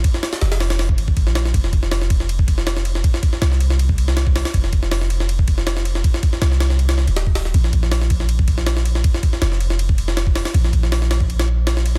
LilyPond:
<<
  \new Staff \with { instrumentName = "808-style bass" } { \clef bass \time 4/4 \key f \minor \tempo 4 = 160 r4 f,,4. aes,,8. bes,,8. | f,,1 | r4 c,2~ c,8. r16 | f,,1 |
r4 c,4.~ c,16 ees,,4~ ees,,16 | bes,,1 | r4 f,,2~ f,,8. r16 | bes,,1 | }
  \new DrumStaff \with { instrumentName = "Drums" } \drummode { \time 4/4 <bd cymr>16 sn16 <hho sn>16 <hho sn>16 <hho sn>16 <hho sn>16 <hho sn>16 <hho sn>16 <hho sn>16 bd16 cymr16 bd16 <bd cymr>16 sn16 <cymr sn>16 sn16 | <bd cymr>16 sn16 <bd cymr>16 sn16 <hho sn>16 sn16 <bd cymr>16 sn16 cymr16 bd16 <bd cymr>16 sn16 <cymr sn>16 sn16 cymr16 sn16 | <bd cymr>16 sn16 <bd cymr>16 sn16 <cymr sn>16 sn16 cymr16 sn16 cymr16 bd16 cymr16 sn16 <cymr sn>16 bd16 <hho sn>16 <hho sn>16 | <bd cymr>16 sn16 <bd cymr>16 sn16 <hho sn>16 sn16 cymr16 sn16 cymr16 bd16 <bd cymr>16 sn16 <cymr sn>16 sn16 cymr16 sn16 |
<bd cymr>16 sn16 <bd cymr>16 sn16 <cymr sn>16 sn16 <cymr sn>16 sn16 cymr16 <cymr sn>16 sn16 cymr16 <cymr sn>16 bd16 <hho sn>16 sn16 | <bd cymr>16 sn16 <bd cymr>16 sn16 <hho sn>16 sn16 <bd cymr>16 sn16 cymr16 bd16 <bd cymr>16 sn16 <cymr sn>16 sn16 cymr16 sn16 | <bd cymr>16 sn16 <bd cymr>16 sn16 <cymr sn>16 sn16 cymr16 sn16 cymr16 bd16 cymr16 sn16 <cymr sn>16 bd16 <hho sn>16 <hho sn>16 | <bd cymr>16 sn16 <bd cymr>16 sn16 <hho sn>16 sn16 <cymr sn>16 bd16 cymr16 <cymr sn>8. <cymr sn>16 sn16 cymr8 | }
>>